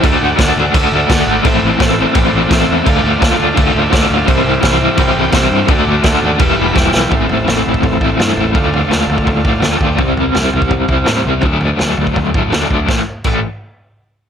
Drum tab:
CC |x---x---x---x---|x---x---x---x---|x---x---x---x---|x---x---x---x---|
SD |----o-------o---|----o-------o---|----o-------o---|----o-------o---|
FT |----------------|----------------|----------------|----------------|
BD |o---o---o---o---|o---o---o---o---|o---o---o---o---|o---o---o---o---|

CC |x---x---x-------|----------------|----------------|----------------|
SD |----o-------o-o-|----o-------o---|----o-------o---|----o-------o---|
FT |----------------|o-o-o-o-o-o-o-o-|o-o-o-o-o-o-o-o-|o-o-o-o-o-o-o-o-|
BD |o---o---o---o---|o------oo-o-----|o------oo-o---o-|o------oo-o-----|

CC |----------------|----x-----------|
SD |----o-------o---|o---------------|
FT |o-o-o-o-o-o-o-o-|----------------|
BD |o------oo-o---o-|o---o-----------|